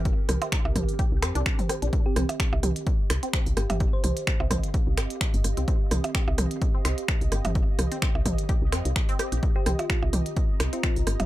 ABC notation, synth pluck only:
X:1
M:4/4
L:1/16
Q:"Swing 16ths" 1/4=128
K:Cm
V:1 name="Synth pluck"
z16 | z G G z8 z3 G G | z c c z12 z | z16 |
z16 | z G G F F z6 F2 z3 |]